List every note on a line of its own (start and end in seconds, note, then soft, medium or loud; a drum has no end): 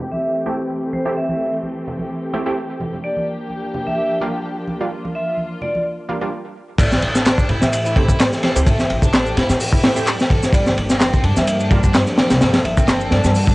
0.00 3.00 E3 medium
0.00 0.43 A3 medium
0.00 3.00 A3 medium
0.00 0.43 C4 medium
0.00 3.00 C4 medium
0.00 0.43 E4 medium
0.00 3.00 G4 medium
0.12 0.19 E5 medium
0.12 high conga medium
0.23 0.31 E5 medium
0.46 0.57 A3 medium
0.46 0.57 C4 medium
0.46 0.56 E4 medium
0.46 0.56 G4 medium
0.46 high conga medium
0.93 1.14 C5 medium
0.93 high conga medium
1.05 1.14 A3 medium
1.05 1.14 C4 medium
1.05 1.14 E4 medium
1.05 1.14 G4 medium
1.17 1.53 E5 medium
1.29 high conga medium
1.63 high conga medium
1.87 low conga medium
1.99 high conga medium
2.33 2.44 A3 medium
2.33 2.44 C4 medium
2.33 2.44 E4 medium
2.33 2.44 G4 medium
2.33 high conga medium
2.46 2.55 A3 medium
2.46 2.55 C4 medium
2.46 2.55 E4 medium
2.46 2.55 G4 loud
2.80 high conga medium
2.80 low conga medium
2.93 low conga medium
3.04 6.29 F3 medium
3.04 6.29 A#3 medium
3.04 6.29 D4 medium
3.04 4.89 G4 medium
3.04 3.24 D5 medium
3.17 high conga medium
3.50 high conga medium
3.74 low conga medium
3.87 3.94 E5 medium
3.87 high conga medium
3.98 4.06 E5 medium
4.21 4.32 G3 medium
4.21 4.32 A#3 medium
4.21 4.32 D4 medium
4.21 4.32 F4 medium
4.21 high conga medium
4.67 high conga medium
4.81 4.90 G3 medium
4.81 4.90 A#3 medium
4.81 4.90 D4 medium
4.81 4.90 F4 medium
4.91 6.31 F4 medium
5.05 high conga medium
5.15 5.35 E5 medium
5.37 high conga medium
5.61 5.81 D5 medium
5.61 low conga medium
5.75 high conga medium
6.09 6.19 G3 medium
6.09 6.19 A#3 medium
6.09 6.19 D4 medium
6.09 6.19 F4 medium
6.09 high conga medium
6.21 6.30 G3 medium
6.21 6.30 A#3 medium
6.21 6.30 D4 medium
6.21 6.30 F4 loud
6.78 6.97 A1 loud
6.78 10.50 E3 medium
6.78 10.50 A3 medium
6.78 6.90 A3 medium
6.78 10.50 C4 medium
6.78 12.38 G4 medium
6.78 6.99 D5 medium
6.78 kick loud
6.78 crash medium
6.78 ride medium
6.78 shaker medium
6.92 snare medium
6.92 high conga medium
6.92 shaker soft
7.02 7.45 A1 medium
7.02 ride medium
7.15 7.48 D4 medium
7.15 snare medium
7.15 shaker medium
7.25 snare loud
7.25 clap loud
7.25 ride medium
7.25 high conga medium
7.25 shaker medium
7.38 kick medium
7.38 shaker soft
7.49 7.59 A2 medium
7.49 7.61 E4 medium
7.49 ride medium
7.49 low conga medium
7.62 8.27 A2 loud
7.62 7.69 E5 medium
7.62 snare medium
7.62 high conga medium
7.62 shaker medium
7.72 7.80 E5 medium
7.72 ride medium
7.72 shaker medium
7.86 8.19 E4 medium
7.86 shaker soft
7.96 8.07 A3 medium
7.96 8.07 C4 medium
7.96 8.07 E4 medium
7.96 8.07 G4 medium
7.96 kick medium
7.96 ride medium
7.96 high conga medium
8.09 kick loud
8.09 shaker medium
8.20 8.26 G3 medium
8.20 snare loud
8.20 clap loud
8.20 ride medium
8.20 shaker medium
8.32 snare soft
8.32 shaker soft
8.43 8.55 A4 medium
8.43 8.64 C5 loud
8.43 snare medium
8.43 ride medium
8.43 high conga loud
8.56 8.64 D2 medium
8.56 8.65 A3 medium
8.56 8.65 C4 medium
8.56 8.65 E4 medium
8.56 8.65 G4 medium
8.56 ride soft
8.56 shaker medium
8.67 8.85 A1 loud
8.67 8.78 A3 medium
8.67 9.03 E5 medium
8.67 kick loud
8.67 ride medium
8.67 shaker medium
8.79 snare soft
8.79 high conga medium
8.79 shaker soft
8.90 9.32 A1 medium
8.90 ride medium
9.02 9.36 D4 medium
9.02 kick medium
9.02 shaker medium
9.13 snare loud
9.13 clap loud
9.13 ride medium
9.13 high conga medium
9.13 shaker medium
9.26 shaker soft
9.37 9.46 A2 medium
9.37 9.49 E4 medium
9.37 snare soft
9.37 ride medium
9.37 low conga loud
9.49 10.15 A2 loud
9.49 snare soft
9.49 high conga medium
9.49 shaker medium
9.60 open hi-hat medium
9.60 shaker medium
9.73 10.06 E4 medium
9.73 kick medium
9.73 shaker soft
9.84 9.94 A3 medium
9.84 9.94 C4 medium
9.84 9.94 E4 medium
9.84 9.94 G4 loud
9.84 snare loud
9.84 ride medium
9.84 high conga medium
9.96 10.05 A3 loud
9.96 10.05 C4 medium
9.96 10.05 E4 medium
9.96 10.05 G4 loud
9.96 shaker medium
10.07 10.14 G3 medium
10.07 clap loud
10.07 ride medium
10.07 shaker medium
10.20 snare medium
10.20 shaker soft
10.30 10.42 A4 medium
10.30 kick medium
10.30 ride medium
10.30 high conga medium
10.30 low conga medium
10.43 snare soft
10.43 low conga medium
10.43 shaker medium
10.53 10.71 G1 loud
10.53 13.55 F3 medium
10.53 10.65 G3 medium
10.53 13.55 A#3 medium
10.53 13.55 D4 medium
10.53 10.74 D5 medium
10.53 kick loud
10.53 ride medium
10.53 shaker medium
10.66 snare soft
10.66 high conga medium
10.66 shaker soft
10.77 11.20 G1 medium
10.77 ride medium
10.90 11.23 C4 medium
10.90 snare soft
10.90 shaker medium
11.01 snare loud
11.01 clap loud
11.01 ride medium
11.01 high conga medium
11.01 shaker medium
11.13 kick medium
11.13 shaker soft
11.23 11.34 G2 medium
11.23 11.36 D4 medium
11.23 ride medium
11.23 low conga medium
11.37 12.02 G2 loud
11.37 11.44 E5 medium
11.37 snare medium
11.37 high conga loud
11.37 shaker medium
11.47 11.56 E5 medium
11.47 ride medium
11.47 shaker medium
11.60 11.93 D4 medium
11.60 shaker soft
11.71 11.82 G3 medium
11.71 11.82 A#3 medium
11.71 11.82 D4 medium
11.71 11.82 F4 medium
11.71 kick medium
11.71 ride medium
11.71 high conga medium
11.84 kick medium
11.84 shaker medium
11.94 12.01 F3 medium
11.94 snare loud
11.94 clap loud
11.94 ride loud
11.94 shaker medium
12.07 snare soft
12.07 shaker soft
12.18 12.30 G4 medium
12.18 snare loud
12.18 ride medium
12.18 high conga medium
12.30 12.39 C2 medium
12.30 snare loud
12.30 ride medium
12.30 shaker medium
12.41 12.59 G1 loud
12.41 12.52 G3 medium
12.41 13.55 A4 medium
12.41 snare loud
12.41 ride medium
12.41 shaker medium
12.54 snare loud
12.54 ride medium
12.54 high conga medium
12.54 shaker soft
12.65 13.07 G1 medium
12.65 12.84 E5 loud
12.65 ride medium
12.77 13.11 C4 medium
12.77 kick loud
12.77 shaker medium
12.88 snare loud
12.88 clap loud
12.88 ride medium
12.88 high conga medium
12.88 shaker medium
13.01 shaker soft
13.11 13.21 G2 medium
13.11 13.24 D4 medium
13.11 13.31 D5 loud
13.11 snare soft
13.11 ride medium
13.11 low conga loud
13.24 13.55 G2 loud
13.24 snare soft
13.24 high conga medium
13.24 shaker medium
13.35 open hi-hat medium
13.35 shaker medium
13.47 13.55 D4 medium
13.47 kick medium
13.47 shaker soft